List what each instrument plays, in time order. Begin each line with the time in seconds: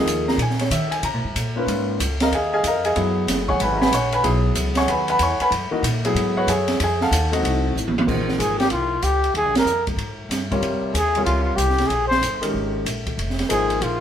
Already playing: grand piano F3 A#3 D#4 G#4
0.05 upright bass D#2, hi-hat pedal, ride
0.28 grand piano A#5, snare
0.38 upright bass A#2, ride
0.42 grand piano G#5
0.50 snare
0.59 grand piano C#5, snare, ride
0.70 upright bass D#3, grand piano E5, hi-hat pedal, ride
0.91 grand piano G#5, ride
1.03 upright bass C#3, grand piano A#5, ride
1.14 upright bass A#2
1.24 upright bass G#2
1.36 upright bass A#2, hi-hat pedal, ride
1.56 grand piano A#2 C#4 F4 B4
1.67 upright bass G#2, ride
1.99 upright bass C#2, hi-hat pedal, ride
2.20 grand piano A#4 D#5 F5 A#5, snare, ride
2.31 upright bass D#2, grand piano F5 G#5, ride
2.35 grand piano G#4 D#5
2.53 grand piano G#4 D#5 F5 G#5
2.63 upright bass F2, grand piano F5, hi-hat pedal, ride
2.67 grand piano A#4 D#5 A#5
2.85 grand piano G#4 D#5 F5 G#5, ride
2.95 upright bass F#2, grand piano F#3 B3 E4 G#4, ride
3.27 upright bass F#1, snare, hi-hat pedal, ride
3.48 grand piano C#5 F#5 G#5 C#6, kick
3.59 upright bass G#1, grand piano B4 F#5 G#5 B5, ride
3.77 grand piano A#5
3.81 grand piano B4 F#5 G#5 B5, snare
3.92 upright bass A#1, grand piano C#5 F#5 G#5 C#6, hi-hat pedal, ride
4.12 grand piano B4 F#5 G#5 B5, ride
4.23 upright bass B1, grand piano F#3 B3 E4 G#4, ride
4.55 upright bass C#2, hi-hat pedal, ride
4.75 grand piano C#5 F#5 G#5 C#6, snare, ride
4.88 upright bass D#2, grand piano B4 F#5 G#5 B5, ride
5.08 grand piano B4 F#5 G#5 B5, ride
5.19 upright bass E2, grand piano C#5 C#6, hi-hat pedal, ride
5.23 grand piano F#5 G#5
5.40 grand piano B4 F#5 G#5 B5, muted upright bass stroke, ride
5.51 upright bass F#2, ride
5.71 grand piano E3 A#3 D#4 F#4, muted upright bass stroke
5.83 upright bass A#2, hi-hat pedal, ride
6.05 grand piano F#3 B3 E4 G#4, ride
6.15 upright bass G#2, ride
6.37 grand piano F#4 B4 C#5 F#5
6.47 upright bass F#2, grand piano G#4 C#5 E5 G#5, hi-hat pedal, ride
6.68 snare, ride
6.80 upright bass F2, grand piano G#4, ride
6.84 grand piano G#5
7.01 grand piano A4 F5 F#5 A5, snare
7.11 upright bass D#2, hi-hat pedal, ride
7.32 grand piano A3 C4 D#4 F#4, ride
7.43 upright bass C2, ride
7.75 upright bass A1, hi-hat pedal
7.88 high tom
7.98 high tom
8.07 upright bass A#1, grand piano F3 A#3 D#4 G#4 C5, kick, crash
8.28 snare
8.38 upright bass G#1, trumpet G#4, hi-hat pedal, ride
8.59 trumpet G4, snare, ride
8.70 upright bass C2, trumpet F4, ride
9.02 upright bass C#2, trumpet G4, hi-hat pedal, ride
9.24 ride
9.34 upright bass D#2, trumpet G#4, ride
9.44 upright bass A#1
9.55 upright bass G#1, trumpet A#4, snare, ride
9.65 upright bass F2, hi-hat pedal
9.87 kick, ride
9.97 upright bass G#2, ride
10.29 upright bass G2, snare, hi-hat pedal, ride
10.51 grand piano C3 G3 F4 A#4 C#5, kick, ride
10.61 upright bass F2, ride
10.82 muted upright bass stroke
10.94 upright bass D#2, trumpet G#4, hi-hat pedal, ride
11.15 grand piano C3 G3 F4 A#4 C#5, ride
11.25 upright bass C#2, trumpet F4, ride
11.44 trumpet F4
11.57 upright bass C2, trumpet G4, hi-hat pedal, ride
11.70 snare
11.78 snare, ride
11.87 upright bass A#1, trumpet G#4, ride
12.07 trumpet C5, snare
12.22 upright bass G1, hi-hat pedal, ride
12.42 grand piano D#3 G#3 C#4 G4 A#4, ride
12.54 upright bass G#1
12.85 upright bass A#1, hi-hat pedal, ride
13.07 kick, ride
13.17 upright bass F1, ride
13.30 snare
13.39 snare, ride
13.49 upright bass G#1, grand piano F3 A#3 D#4 G#4 C5, trumpet G#4, hi-hat pedal, ride
13.70 ride
13.81 upright bass A#1, trumpet F4, ride